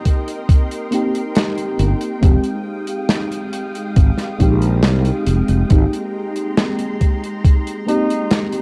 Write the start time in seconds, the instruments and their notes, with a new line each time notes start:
Already playing: fm electric piano A#3 C4 D#4 G4, string machine A#4 D#5 G5 C6
0.05 kick, closed hi-hat
0.28 closed hi-hat
0.49 kick, closed hi-hat
0.71 closed hi-hat
0.91 fm electric piano A#3 C4 D#4 G4, closed hi-hat
1.15 closed hi-hat
1.35 snare, closed hi-hat
1.58 closed hi-hat
1.79 fretless electric bass G1, closed hi-hat
2.01 closed hi-hat
2.21 fretless electric bass F1, fm electric piano G#3 C4 D#4 G4, string machine G#3 F5 D#6, kick, closed hi-hat
2.44 closed hi-hat
2.87 closed hi-hat
3.09 snare, closed hi-hat
3.32 closed hi-hat
3.53 closed hi-hat
3.75 closed hi-hat
3.96 fretless electric bass G#1, kick, closed hi-hat
4.18 snare, closed hi-hat
4.39 fretless electric bass A#1, fm electric piano G#3 C4 D#4 G4, kick, closed hi-hat
4.62 closed hi-hat
4.83 fretless electric bass C2, snare, closed hi-hat
5.05 closed hi-hat
5.27 fretless electric bass F1, closed hi-hat
5.48 fretless electric bass F1, closed hi-hat
5.69 fretless electric bass G#1, fm electric piano A#3 C4 D#4 G4, string machine A#5 C6, kick, closed hi-hat
5.93 closed hi-hat
6.36 closed hi-hat
6.57 snare, closed hi-hat
6.79 closed hi-hat
7.01 kick, closed hi-hat
7.24 closed hi-hat
7.44 kick, closed hi-hat
7.67 closed hi-hat
7.86 fm electric piano A#3 C4 D#4 G4, flugelhorn D#4, closed hi-hat
8.10 closed hi-hat
8.31 snare, closed hi-hat
8.52 closed hi-hat